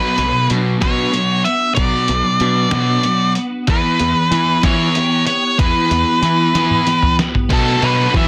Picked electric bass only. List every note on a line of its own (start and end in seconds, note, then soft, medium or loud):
0.18 0.30 B1 medium
0.50 0.74 B2 medium
0.82 1.06 B2 medium
1.77 1.89 B1 medium
2.09 2.21 B1 medium
2.41 2.65 B2 medium
2.73 2.97 B2 medium
3.68 3.80 E2 loud
4.00 4.12 E2 loud
4.31 4.56 E3 medium
4.64 4.88 E3 medium
5.59 5.71 E2 loud
5.91 6.03 E2 medium
6.22 6.47 E3 medium
6.55 6.79 E3 medium
7.50 7.75 B2 medium
7.82 8.07 B2 loud
8.14 8.28 E3 medium